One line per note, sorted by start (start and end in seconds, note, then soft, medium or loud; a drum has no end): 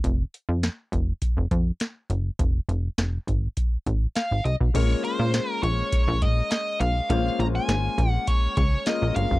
0.04 0.25 F1 loud
0.04 kick medium
0.04 closed hi-hat medium
0.34 closed hi-hat medium
0.49 0.69 F2 medium
0.63 snare loud
0.63 closed hi-hat medium
0.92 1.13 F1 loud
0.92 kick medium
0.92 closed hi-hat medium
1.22 kick medium
1.22 closed hi-hat medium
1.37 1.47 F1 loud
1.51 1.72 F2 loud
1.51 kick medium
1.51 closed hi-hat medium
1.80 snare loud
1.80 closed hi-hat loud
2.10 2.30 F#1 medium
2.10 closed hi-hat medium
2.39 2.60 F1 loud
2.39 kick loud
2.39 closed hi-hat medium
2.69 2.89 F1 loud
2.69 closed hi-hat medium
2.98 3.19 F1 medium
2.98 snare loud
2.98 closed hi-hat medium
3.27 3.48 G#1 medium
3.27 kick medium
3.27 closed hi-hat medium
3.57 kick medium
3.57 closed hi-hat medium
3.86 4.07 A1 medium
3.86 kick medium
3.86 closed hi-hat medium
4.15 4.43 F5 loud
4.15 snare loud
4.15 closed hi-hat medium
4.31 4.41 G#1 medium
4.45 4.56 C2 medium
4.45 4.53 D#5 medium
4.45 closed hi-hat medium
4.61 4.70 B1 medium
4.61 kick medium
4.74 4.95 A#1 loud
4.74 7.05 G#3 medium
4.74 7.06 A#3 medium
4.74 7.06 C#4 medium
4.74 7.06 F4 medium
4.74 7.06 A#4 medium
4.74 5.04 C#5 loud
4.74 kick loud
4.74 closed hi-hat medium
4.74 crash loud
5.04 5.51 C5 loud
5.04 closed hi-hat medium
5.19 5.40 A#2 loud
5.34 snare loud
5.34 closed hi-hat medium
5.51 5.63 A#4 loud
5.63 5.84 A#1 medium
5.63 6.24 C#5 medium
5.63 kick medium
5.63 closed hi-hat medium
5.92 kick loud
5.92 closed hi-hat loud
6.08 6.23 A#1 loud
6.22 6.42 A#2 loud
6.22 6.49 D#5 loud
6.22 kick loud
6.22 closed hi-hat medium
6.51 6.80 D#5 loud
6.51 snare loud
6.51 closed hi-hat loud
6.80 7.01 B1 loud
6.80 7.09 F5 loud
6.80 closed hi-hat medium
7.09 7.30 A#1 loud
7.09 8.83 G#3 medium
7.09 8.83 A#3 medium
7.09 8.83 C#4 medium
7.09 8.83 F4 medium
7.09 8.83 C5 medium
7.09 7.40 F5 loud
7.09 kick loud
7.09 closed hi-hat medium
7.39 7.60 A#1 loud
7.39 7.45 A#5 loud
7.39 closed hi-hat medium
7.55 8.10 G#5 loud
7.69 7.89 G#1 medium
7.69 snare loud
7.69 closed hi-hat medium
7.98 8.19 A#1 loud
7.98 kick medium
7.98 closed hi-hat medium
8.10 8.30 F#5 loud
8.27 8.56 C#5 medium
8.27 kick loud
8.27 closed hi-hat loud
8.57 8.78 C#2 medium
8.57 8.87 C#5 loud
8.57 kick loud
8.57 closed hi-hat medium
8.86 9.39 G#3 medium
8.86 9.39 A#3 soft
8.86 9.39 C#4 soft
8.86 9.39 F4 medium
8.86 9.39 A#4 medium
8.86 9.14 D#5 loud
8.86 snare loud
8.86 closed hi-hat loud
9.02 9.12 A#1 loud
9.16 9.27 G1 medium
9.16 9.39 F5 medium
9.16 closed hi-hat medium
9.31 9.39 F#1 loud
9.31 kick medium